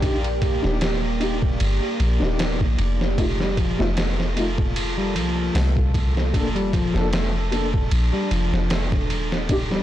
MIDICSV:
0, 0, Header, 1, 6, 480
1, 0, Start_track
1, 0, Tempo, 789474
1, 14, Time_signature, 4, 2, 24, 8
1, 5976, End_track
2, 0, Start_track
2, 0, Title_t, "Ambient pad"
2, 0, Program_c, 0, 92
2, 0, Note_on_c, 0, 58, 76
2, 0, Note_on_c, 0, 67, 88
2, 0, Note_on_c, 0, 74, 79
2, 1907, Note_off_c, 0, 67, 0
2, 1909, Note_off_c, 0, 74, 0
2, 1933, Note_on_c, 0, 65, 69
2, 1933, Note_on_c, 0, 69, 88
2, 3829, Note_off_c, 0, 58, 0
2, 3834, Note_off_c, 0, 65, 0
2, 3856, Note_on_c, 0, 62, 76
2, 5749, Note_off_c, 0, 69, 0
2, 5756, Note_off_c, 0, 62, 0
2, 5771, Note_on_c, 0, 62, 81
2, 5773, Note_on_c, 0, 67, 84
2, 5774, Note_on_c, 0, 63, 73
2, 5976, Note_off_c, 0, 62, 0
2, 5976, Note_off_c, 0, 63, 0
2, 5976, Note_off_c, 0, 67, 0
2, 5976, End_track
3, 0, Start_track
3, 0, Title_t, "Upright piano"
3, 0, Program_c, 1, 0
3, 11, Note_on_c, 1, 62, 77
3, 19, Note_on_c, 1, 63, 65
3, 28, Note_on_c, 1, 67, 79
3, 78, Note_off_c, 1, 62, 0
3, 82, Note_off_c, 1, 63, 0
3, 86, Note_off_c, 1, 67, 0
3, 380, Note_on_c, 1, 62, 96
3, 389, Note_on_c, 1, 63, 84
3, 398, Note_on_c, 1, 67, 102
3, 436, Note_off_c, 1, 62, 0
3, 441, Note_off_c, 1, 63, 0
3, 445, Note_off_c, 1, 67, 0
3, 730, Note_on_c, 1, 62, 73
3, 737, Note_on_c, 1, 63, 70
3, 746, Note_on_c, 1, 67, 87
3, 798, Note_off_c, 1, 62, 0
3, 801, Note_off_c, 1, 63, 0
3, 805, Note_off_c, 1, 67, 0
3, 1335, Note_on_c, 1, 62, 79
3, 1352, Note_on_c, 1, 63, 73
3, 1369, Note_on_c, 1, 67, 86
3, 1903, Note_off_c, 1, 62, 0
3, 1911, Note_off_c, 1, 63, 0
3, 1920, Note_off_c, 1, 67, 0
3, 1928, Note_on_c, 1, 57, 71
3, 1937, Note_on_c, 1, 63, 67
3, 1946, Note_on_c, 1, 65, 78
3, 1996, Note_off_c, 1, 57, 0
3, 2001, Note_off_c, 1, 63, 0
3, 2006, Note_off_c, 1, 65, 0
3, 2303, Note_on_c, 1, 57, 99
3, 2311, Note_on_c, 1, 63, 83
3, 2319, Note_on_c, 1, 65, 104
3, 2358, Note_off_c, 1, 57, 0
3, 2362, Note_off_c, 1, 63, 0
3, 2366, Note_off_c, 1, 65, 0
3, 2648, Note_on_c, 1, 57, 73
3, 2657, Note_on_c, 1, 63, 71
3, 2666, Note_on_c, 1, 65, 79
3, 2717, Note_off_c, 1, 57, 0
3, 2721, Note_off_c, 1, 63, 0
3, 2726, Note_off_c, 1, 65, 0
3, 3849, Note_on_c, 1, 58, 75
3, 3859, Note_on_c, 1, 62, 69
3, 3866, Note_on_c, 1, 69, 79
3, 3917, Note_off_c, 1, 58, 0
3, 3922, Note_off_c, 1, 62, 0
3, 3925, Note_off_c, 1, 69, 0
3, 4221, Note_on_c, 1, 58, 96
3, 4230, Note_on_c, 1, 62, 86
3, 4239, Note_on_c, 1, 69, 102
3, 4277, Note_off_c, 1, 58, 0
3, 4281, Note_off_c, 1, 62, 0
3, 4286, Note_off_c, 1, 69, 0
3, 4569, Note_on_c, 1, 58, 75
3, 4578, Note_on_c, 1, 62, 71
3, 4586, Note_on_c, 1, 69, 82
3, 4637, Note_off_c, 1, 58, 0
3, 4641, Note_off_c, 1, 62, 0
3, 4646, Note_off_c, 1, 69, 0
3, 5771, Note_on_c, 1, 62, 72
3, 5778, Note_on_c, 1, 63, 64
3, 5788, Note_on_c, 1, 67, 81
3, 5838, Note_off_c, 1, 62, 0
3, 5841, Note_off_c, 1, 63, 0
3, 5847, Note_off_c, 1, 67, 0
3, 5976, End_track
4, 0, Start_track
4, 0, Title_t, "Nylon-string guitar"
4, 0, Program_c, 2, 24
4, 2065, Note_on_c, 2, 55, 74
4, 2163, Note_off_c, 2, 55, 0
4, 2172, Note_on_c, 2, 53, 74
4, 2402, Note_off_c, 2, 53, 0
4, 2411, Note_on_c, 2, 57, 79
4, 2538, Note_off_c, 2, 57, 0
4, 3025, Note_on_c, 2, 55, 73
4, 3123, Note_off_c, 2, 55, 0
4, 3133, Note_on_c, 2, 53, 78
4, 3363, Note_off_c, 2, 53, 0
4, 3372, Note_on_c, 2, 57, 76
4, 3499, Note_off_c, 2, 57, 0
4, 3985, Note_on_c, 2, 55, 76
4, 4082, Note_off_c, 2, 55, 0
4, 4091, Note_on_c, 2, 53, 73
4, 4322, Note_off_c, 2, 53, 0
4, 4332, Note_on_c, 2, 57, 75
4, 4459, Note_off_c, 2, 57, 0
4, 4943, Note_on_c, 2, 55, 75
4, 5042, Note_off_c, 2, 55, 0
4, 5052, Note_on_c, 2, 53, 76
4, 5282, Note_off_c, 2, 53, 0
4, 5292, Note_on_c, 2, 57, 72
4, 5419, Note_off_c, 2, 57, 0
4, 5904, Note_on_c, 2, 55, 78
4, 5976, Note_off_c, 2, 55, 0
4, 5976, End_track
5, 0, Start_track
5, 0, Title_t, "808-style bass"
5, 0, Program_c, 3, 38
5, 0, Note_on_c, 3, 34, 98
5, 361, Note_off_c, 3, 34, 0
5, 391, Note_on_c, 3, 27, 99
5, 956, Note_off_c, 3, 27, 0
5, 977, Note_on_c, 3, 31, 98
5, 1092, Note_off_c, 3, 31, 0
5, 1215, Note_on_c, 3, 34, 84
5, 1331, Note_off_c, 3, 34, 0
5, 1346, Note_on_c, 3, 27, 98
5, 1457, Note_off_c, 3, 27, 0
5, 1457, Note_on_c, 3, 27, 90
5, 1589, Note_on_c, 3, 34, 94
5, 1598, Note_off_c, 3, 27, 0
5, 1682, Note_off_c, 3, 34, 0
5, 1696, Note_on_c, 3, 29, 99
5, 2282, Note_off_c, 3, 29, 0
5, 2309, Note_on_c, 3, 29, 100
5, 3133, Note_on_c, 3, 36, 114
5, 3142, Note_off_c, 3, 29, 0
5, 3348, Note_off_c, 3, 36, 0
5, 3375, Note_on_c, 3, 36, 88
5, 3855, Note_on_c, 3, 29, 101
5, 3864, Note_off_c, 3, 36, 0
5, 4201, Note_off_c, 3, 29, 0
5, 4225, Note_on_c, 3, 29, 105
5, 4793, Note_off_c, 3, 29, 0
5, 4814, Note_on_c, 3, 34, 102
5, 4930, Note_off_c, 3, 34, 0
5, 5053, Note_on_c, 3, 29, 90
5, 5170, Note_off_c, 3, 29, 0
5, 5186, Note_on_c, 3, 29, 97
5, 5292, Note_off_c, 3, 29, 0
5, 5292, Note_on_c, 3, 29, 91
5, 5532, Note_on_c, 3, 27, 92
5, 5541, Note_off_c, 3, 29, 0
5, 5976, Note_off_c, 3, 27, 0
5, 5976, End_track
6, 0, Start_track
6, 0, Title_t, "Drums"
6, 14, Note_on_c, 9, 36, 105
6, 15, Note_on_c, 9, 51, 83
6, 75, Note_off_c, 9, 36, 0
6, 76, Note_off_c, 9, 51, 0
6, 148, Note_on_c, 9, 51, 43
6, 209, Note_off_c, 9, 51, 0
6, 254, Note_on_c, 9, 36, 100
6, 254, Note_on_c, 9, 51, 69
6, 314, Note_off_c, 9, 51, 0
6, 315, Note_off_c, 9, 36, 0
6, 390, Note_on_c, 9, 38, 47
6, 451, Note_off_c, 9, 38, 0
6, 493, Note_on_c, 9, 51, 91
6, 498, Note_on_c, 9, 38, 118
6, 554, Note_off_c, 9, 51, 0
6, 559, Note_off_c, 9, 38, 0
6, 734, Note_on_c, 9, 51, 70
6, 795, Note_off_c, 9, 51, 0
6, 866, Note_on_c, 9, 36, 100
6, 927, Note_off_c, 9, 36, 0
6, 973, Note_on_c, 9, 51, 93
6, 1034, Note_off_c, 9, 51, 0
6, 1215, Note_on_c, 9, 51, 69
6, 1276, Note_off_c, 9, 51, 0
6, 1351, Note_on_c, 9, 38, 47
6, 1412, Note_off_c, 9, 38, 0
6, 1455, Note_on_c, 9, 51, 86
6, 1459, Note_on_c, 9, 38, 117
6, 1515, Note_off_c, 9, 51, 0
6, 1520, Note_off_c, 9, 38, 0
6, 1586, Note_on_c, 9, 36, 84
6, 1647, Note_off_c, 9, 36, 0
6, 1693, Note_on_c, 9, 51, 63
6, 1754, Note_off_c, 9, 51, 0
6, 1831, Note_on_c, 9, 38, 52
6, 1892, Note_off_c, 9, 38, 0
6, 1934, Note_on_c, 9, 36, 100
6, 1935, Note_on_c, 9, 51, 88
6, 1994, Note_off_c, 9, 36, 0
6, 1995, Note_off_c, 9, 51, 0
6, 2070, Note_on_c, 9, 38, 40
6, 2131, Note_off_c, 9, 38, 0
6, 2173, Note_on_c, 9, 36, 92
6, 2173, Note_on_c, 9, 51, 72
6, 2234, Note_off_c, 9, 36, 0
6, 2234, Note_off_c, 9, 51, 0
6, 2311, Note_on_c, 9, 38, 42
6, 2372, Note_off_c, 9, 38, 0
6, 2413, Note_on_c, 9, 51, 91
6, 2418, Note_on_c, 9, 38, 115
6, 2474, Note_off_c, 9, 51, 0
6, 2479, Note_off_c, 9, 38, 0
6, 2553, Note_on_c, 9, 38, 50
6, 2614, Note_off_c, 9, 38, 0
6, 2655, Note_on_c, 9, 51, 75
6, 2716, Note_off_c, 9, 51, 0
6, 2786, Note_on_c, 9, 36, 102
6, 2847, Note_off_c, 9, 36, 0
6, 2895, Note_on_c, 9, 51, 92
6, 2956, Note_off_c, 9, 51, 0
6, 3136, Note_on_c, 9, 51, 70
6, 3197, Note_off_c, 9, 51, 0
6, 3375, Note_on_c, 9, 46, 87
6, 3380, Note_on_c, 9, 38, 123
6, 3435, Note_off_c, 9, 46, 0
6, 3440, Note_off_c, 9, 38, 0
6, 3506, Note_on_c, 9, 36, 92
6, 3567, Note_off_c, 9, 36, 0
6, 3614, Note_on_c, 9, 36, 87
6, 3616, Note_on_c, 9, 51, 67
6, 3675, Note_off_c, 9, 36, 0
6, 3677, Note_off_c, 9, 51, 0
6, 3753, Note_on_c, 9, 38, 51
6, 3813, Note_off_c, 9, 38, 0
6, 3854, Note_on_c, 9, 36, 101
6, 3856, Note_on_c, 9, 51, 88
6, 3915, Note_off_c, 9, 36, 0
6, 3917, Note_off_c, 9, 51, 0
6, 3989, Note_on_c, 9, 51, 42
6, 4050, Note_off_c, 9, 51, 0
6, 4094, Note_on_c, 9, 36, 99
6, 4097, Note_on_c, 9, 51, 69
6, 4155, Note_off_c, 9, 36, 0
6, 4158, Note_off_c, 9, 51, 0
6, 4231, Note_on_c, 9, 38, 49
6, 4292, Note_off_c, 9, 38, 0
6, 4333, Note_on_c, 9, 51, 88
6, 4338, Note_on_c, 9, 38, 120
6, 4394, Note_off_c, 9, 51, 0
6, 4399, Note_off_c, 9, 38, 0
6, 4574, Note_on_c, 9, 51, 71
6, 4634, Note_off_c, 9, 51, 0
6, 4705, Note_on_c, 9, 36, 101
6, 4766, Note_off_c, 9, 36, 0
6, 4812, Note_on_c, 9, 51, 91
6, 4873, Note_off_c, 9, 51, 0
6, 5053, Note_on_c, 9, 51, 70
6, 5114, Note_off_c, 9, 51, 0
6, 5190, Note_on_c, 9, 38, 46
6, 5251, Note_off_c, 9, 38, 0
6, 5290, Note_on_c, 9, 51, 93
6, 5295, Note_on_c, 9, 38, 121
6, 5351, Note_off_c, 9, 51, 0
6, 5356, Note_off_c, 9, 38, 0
6, 5425, Note_on_c, 9, 36, 84
6, 5485, Note_off_c, 9, 36, 0
6, 5533, Note_on_c, 9, 51, 67
6, 5594, Note_off_c, 9, 51, 0
6, 5668, Note_on_c, 9, 38, 48
6, 5729, Note_off_c, 9, 38, 0
6, 5771, Note_on_c, 9, 51, 87
6, 5772, Note_on_c, 9, 36, 106
6, 5831, Note_off_c, 9, 51, 0
6, 5833, Note_off_c, 9, 36, 0
6, 5907, Note_on_c, 9, 38, 37
6, 5968, Note_off_c, 9, 38, 0
6, 5976, End_track
0, 0, End_of_file